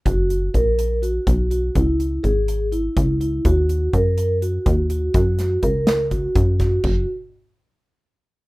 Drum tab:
CC |-------|-------|-------|-------|
HH |xxxxxxx|xxxxxxx|xxxxxxx|xxxxxxx|
SD |-------|-------|-------|-o-o--o|
BD |o-o--o-|o-o--o-|o-o--o-|o-o-ooo|

CC |x------|
HH |-------|
SD |-------|
BD |o------|